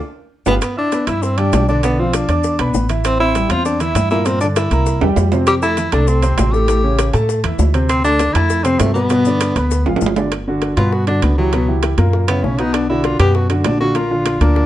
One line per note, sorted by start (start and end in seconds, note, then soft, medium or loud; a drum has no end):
0.46 0.58 G1 medium
0.46 0.54 B3 medium
0.46 0.56 F4 medium
0.46 0.56 G4 medium
0.46 0.56 B4 medium
0.46 low bongo medium
0.46 high timbale medium
0.46 maracas medium
0.61 0.76 B3 medium
0.61 high bongo medium
0.61 high timbale medium
0.61 maracas medium
0.77 1.09 D4 loud
0.77 0.89 E4 medium
0.77 0.89 E5 medium
0.77 0.90 E6 medium
0.92 1.05 B3 medium
0.92 1.05 B4 medium
0.92 1.05 B5 medium
0.92 high bongo medium
0.92 high timbale medium
0.92 maracas medium
1.07 1.50 G2 loud
1.07 1.24 E4 loud
1.07 1.33 E4 medium
1.07 1.33 E5 medium
1.07 1.33 E6 medium
1.07 high bongo soft
1.07 high timbale medium
1.07 maracas soft
1.23 1.39 C4 medium
1.23 high bongo medium
1.23 maracas medium
1.38 1.63 G3 medium
1.38 1.68 D4 medium
1.38 1.63 G4 medium
1.38 1.63 G5 medium
1.38 high bongo soft
1.38 high timbale medium
1.53 2.23 B1 medium
1.53 high bongo soft
1.53 low bongo medium
1.53 high timbale medium
1.53 low timbale medium
1.53 maracas medium
1.68 1.81 D3 medium
1.68 1.81 D4 medium
1.68 1.82 D4 medium
1.68 1.81 D5 medium
1.68 high bongo soft
1.68 maracas soft
1.83 1.96 D3 medium
1.83 2.01 B3 medium
1.83 1.96 D4 medium
1.83 1.97 D5 medium
1.83 high bongo medium
1.83 high timbale medium
1.83 maracas medium
1.99 2.23 F3 medium
1.99 2.16 C4 medium
1.99 2.24 F4 medium
1.99 2.24 F5 medium
2.13 2.75 D4 medium
2.13 high bongo medium
2.13 high timbale medium
2.13 maracas medium
2.28 2.57 E2 loud
2.28 2.54 D4 medium
2.28 2.54 D5 medium
2.28 2.54 D6 medium
2.28 high bongo soft
2.28 high timbale medium
2.28 maracas soft
2.44 high bongo medium
2.44 maracas medium
2.59 2.73 B1 medium
2.59 2.84 B3 medium
2.59 2.84 B4 medium
2.59 2.84 B5 medium
2.59 high bongo soft
2.59 high timbale medium
2.74 3.44 A1 medium
2.74 high bongo soft
2.74 low bongo medium
2.74 maracas medium
2.89 3.14 E3 medium
2.89 3.14 E4 medium
2.89 3.15 E5 medium
2.89 high bongo soft
2.89 high timbale medium
2.89 maracas soft
3.04 3.19 C4 loud
3.04 high bongo medium
3.04 high timbale loud
3.04 maracas medium
3.20 3.32 C4 medium
3.20 3.52 E4 loud
3.20 3.32 C5 medium
3.20 3.32 C6 medium
3.35 3.48 G3 medium
3.35 3.48 G4 medium
3.35 3.48 G5 medium
3.35 high bongo medium
3.35 high timbale medium
3.35 maracas medium
3.49 3.92 E2 loud
3.49 3.75 C4 medium
3.49 3.65 F4 loud
3.49 3.76 C5 medium
3.49 3.76 C6 medium
3.49 high bongo soft
3.49 high timbale medium
3.49 maracas soft
3.65 3.82 D4 medium
3.65 high bongo medium
3.65 maracas medium
3.80 4.05 E3 medium
3.80 4.05 E4 medium
3.80 4.10 E4 loud
3.80 4.06 E5 medium
3.80 high bongo soft
3.80 high timbale medium
3.80 maracas medium
3.95 4.65 G2 medium
3.95 high bongo soft
3.95 low bongo medium
3.95 high timbale medium
3.95 maracas medium
4.11 4.23 A#2 medium
4.11 4.24 A#3 medium
4.11 4.27 E4 medium
4.11 4.24 A#4 medium
4.11 high bongo soft
4.11 maracas soft
4.25 4.39 A#2 medium
4.25 4.39 A#3 medium
4.25 4.40 C4 medium
4.25 4.39 A#4 medium
4.25 high bongo medium
4.25 high timbale medium
4.25 maracas medium
4.41 4.66 D3 medium
4.41 4.48 D4 medium
4.41 4.66 D4 medium
4.41 4.67 D5 medium
4.41 maracas medium
4.56 5.13 E4 medium
4.56 high bongo medium
4.56 high timbale loud
4.56 maracas medium
4.71 4.99 C2 medium
4.71 4.96 A#3 medium
4.71 4.96 A#4 medium
4.71 4.97 A#5 medium
4.71 high bongo soft
4.71 high timbale medium
4.71 maracas soft
4.86 high bongo medium
4.86 maracas medium
5.01 5.16 E2 medium
5.01 5.26 G3 medium
5.01 5.26 G4 medium
5.01 5.27 G5 medium
5.01 high bongo soft
5.01 high timbale medium
5.16 5.87 F2 medium
5.16 high bongo soft
5.16 low bongo medium
5.16 low timbale medium
5.16 maracas medium
5.32 5.57 C3 medium
5.32 5.57 C4 medium
5.32 5.57 C5 medium
5.32 high bongo soft
5.32 low timbale medium
5.32 maracas soft
5.47 5.54 G4 loud
5.47 high bongo medium
5.47 high timbale medium
5.47 maracas medium
5.62 5.75 A3 medium
5.62 5.94 E4 loud
5.62 5.75 A4 medium
5.62 5.75 A5 medium
5.62 maracas medium
5.77 5.90 E3 medium
5.77 5.90 E4 medium
5.77 5.90 E5 medium
5.77 high bongo medium
5.77 high timbale medium
5.77 maracas medium
5.92 6.35 C2 loud
5.92 6.17 A3 medium
5.92 6.09 D4 medium
5.92 6.18 A4 medium
5.92 6.18 A5 medium
5.92 high bongo soft
5.92 high timbale medium
5.92 maracas soft
6.07 6.54 C4 medium
6.07 high bongo medium
6.07 maracas medium
6.22 6.48 C3 medium
6.22 6.48 C4 medium
6.22 6.48 C5 medium
6.22 high bongo soft
6.22 high timbale medium
6.22 maracas medium
6.38 7.08 A1 medium
6.38 high bongo soft
6.38 low bongo medium
6.38 high timbale medium
6.38 low timbale medium
6.38 maracas medium
6.53 6.65 A2 medium
6.53 6.66 A3 medium
6.53 7.14 G4 medium
6.53 6.66 A4 medium
6.53 high bongo soft
6.53 maracas soft
6.68 6.81 A2 medium
6.68 6.81 A3 medium
6.68 6.81 A4 medium
6.68 high bongo medium
6.68 high timbale medium
6.68 maracas medium
6.83 7.08 C#3 medium
6.83 7.08 C#4 medium
6.83 7.09 C#5 medium
6.99 high bongo medium
6.99 high timbale loud
6.99 maracas medium
7.13 7.42 A2 medium
7.13 7.38 A3 medium
7.13 7.38 A4 medium
7.13 7.39 A5 medium
7.13 high bongo soft
7.13 high timbale medium
7.13 maracas soft
7.29 high bongo medium
7.29 maracas medium
7.43 7.58 E2 medium
7.43 7.69 E3 medium
7.43 7.69 E4 medium
7.43 7.69 E5 medium
7.43 high bongo soft
7.43 high timbale medium
7.59 8.29 D2 medium
7.59 high bongo soft
7.59 low bongo medium
7.59 low timbale medium
7.59 maracas medium
7.74 7.99 C3 medium
7.74 7.99 C4 medium
7.74 7.99 C5 medium
7.74 high bongo soft
7.74 high timbale medium
7.74 maracas soft
7.89 8.03 C4 loud
7.89 high bongo medium
7.89 high timbale loud
7.89 maracas medium
8.04 8.17 A3 medium
8.04 8.35 D4 loud
8.04 8.17 A4 medium
8.04 8.17 A5 medium
8.04 maracas medium
8.19 8.32 D3 medium
8.19 8.32 D4 medium
8.19 8.33 D5 medium
8.19 high bongo medium
8.19 high timbale medium
8.19 maracas medium
8.34 8.77 F2 loud
8.34 8.60 A3 medium
8.34 8.66 E4 loud
8.34 8.60 A4 medium
8.34 8.60 A5 medium
8.34 high bongo soft
8.34 high timbale medium
8.34 maracas soft
8.50 high bongo medium
8.50 maracas medium
8.64 8.90 C3 medium
8.64 8.81 C4 medium
8.64 8.90 C4 medium
8.64 8.90 C5 medium
8.64 high bongo soft
8.64 high timbale medium
8.64 maracas medium
8.79 9.50 G2 medium
8.79 8.94 A3 medium
8.79 high bongo soft
8.79 low bongo medium
8.79 high timbale loud
8.79 low timbale medium
8.79 maracas medium
8.94 9.08 B2 medium
8.94 9.97 B3 loud
8.94 9.08 B3 medium
8.94 9.08 B4 medium
8.94 high bongo soft
8.94 maracas soft
9.09 9.23 B2 medium
9.09 9.23 B3 medium
9.09 9.24 B4 medium
9.09 high bongo medium
9.09 high timbale medium
9.09 maracas medium
9.25 9.51 D3 medium
9.25 9.51 D4 medium
9.25 9.51 D5 medium
9.25 maracas medium
9.40 high bongo medium
9.40 high timbale loud
9.40 maracas medium
9.56 9.84 D2 loud
9.56 9.81 B3 medium
9.56 9.81 B4 medium
9.56 9.81 B5 medium
9.56 high bongo soft
9.56 high timbale medium
9.56 maracas soft
9.71 high bongo medium
9.71 maracas medium
9.86 10.00 G#1 medium
9.86 10.11 F3 medium
9.86 10.11 F4 medium
9.86 10.12 F5 medium
9.86 high bongo soft
9.86 high timbale medium
9.96 high timbale medium
10.01 10.72 G1 medium
10.01 high bongo soft
10.01 low bongo medium
10.01 maracas medium
10.06 low timbale medium
10.16 10.29 D3 medium
10.16 10.29 D4 medium
10.16 10.29 D5 medium
10.16 high bongo soft
10.16 low timbale medium
10.16 maracas soft
10.32 high bongo medium
10.32 high timbale medium
10.47 10.72 D3 medium
10.47 10.72 D4 medium
10.47 10.72 F#4 medium
10.62 high bongo medium
10.62 high timbale medium
10.77 11.19 G2 medium
10.77 11.02 B2 medium
10.77 11.02 B3 medium
10.77 10.94 F4 medium
10.77 11.02 B4 medium
10.77 high bongo soft
10.77 high timbale medium
10.92 11.07 F#4 medium
10.92 high bongo medium
11.07 11.32 D3 medium
11.07 11.24 D4 medium
11.07 11.32 D4 medium
11.07 11.33 F#4 medium
11.07 high bongo soft
11.07 high timbale medium
11.22 11.93 C#2 medium
11.22 11.37 B3 medium
11.22 high bongo soft
11.22 low bongo medium
11.22 high timbale medium
11.38 11.50 E3 medium
11.38 11.80 F#3 medium
11.38 11.51 E4 medium
11.38 11.51 G4 medium
11.38 high bongo soft
11.53 11.65 B2 medium
11.53 11.66 B3 medium
11.53 11.66 B4 medium
11.53 high bongo medium
11.53 high timbale medium
11.68 11.93 E3 medium
11.68 11.93 E4 medium
11.68 11.93 G4 medium
11.83 high bongo medium
11.83 high timbale medium
11.98 12.40 F#2 medium
11.98 12.23 A#2 medium
11.98 12.23 A#3 medium
11.98 12.23 A#4 medium
11.98 high bongo soft
11.98 high timbale medium
12.13 high bongo medium
12.28 12.53 C#3 medium
12.28 12.45 B3 medium
12.28 12.53 C#4 medium
12.28 12.53 E4 medium
12.28 high bongo soft
12.28 high timbale loud
12.44 13.14 B1 medium
12.44 12.60 C#4 medium
12.44 high bongo soft
12.44 low bongo medium
12.59 12.84 B2 medium
12.59 12.84 B3 medium
12.59 12.75 D#4 loud
12.59 12.84 B4 medium
12.59 high bongo soft
12.59 high timbale medium
12.74 12.89 D4 medium
12.74 high bongo medium
12.74 high timbale medium
12.89 13.15 D3 medium
12.89 13.15 D4 medium
12.89 13.06 E4 loud
12.89 13.15 F#4 medium
13.04 13.19 F4 medium
13.04 high bongo medium
13.04 high timbale medium
13.19 13.62 F#2 loud
13.19 13.44 B2 medium
13.19 13.44 B3 medium
13.19 13.37 G4 loud
13.19 13.45 B4 medium
13.19 high bongo soft
13.19 high timbale medium
13.35 13.49 F#4 medium
13.35 high bongo medium
13.50 13.75 D3 medium
13.50 13.66 A3 medium
13.50 13.75 D4 medium
13.50 13.75 F#4 medium
13.50 high bongo soft
13.50 high timbale medium
13.64 14.35 A#1 medium
13.64 13.80 D4 medium
13.64 high bongo soft
13.64 low bongo medium
13.64 high timbale loud
13.64 low timbale medium
13.80 13.93 D3 medium
13.80 13.93 D4 medium
13.80 13.93 F4 medium
13.80 13.98 F#4 loud
13.80 high bongo soft
13.95 14.08 A#2 medium
13.95 14.08 A#3 medium
13.95 14.41 F4 medium
13.95 14.08 A#4 medium
13.95 high bongo medium
13.95 high timbale medium
14.11 14.36 D3 medium
14.11 14.36 D4 medium
14.11 14.36 F4 medium
14.26 high bongo medium
14.26 high timbale medium
14.41 14.66 D2 loud
14.41 14.66 A#2 medium
14.41 14.66 A#3 medium
14.41 14.66 D4 medium
14.41 14.66 A#4 medium
14.41 high bongo soft
14.41 high timbale medium
14.56 high bongo medium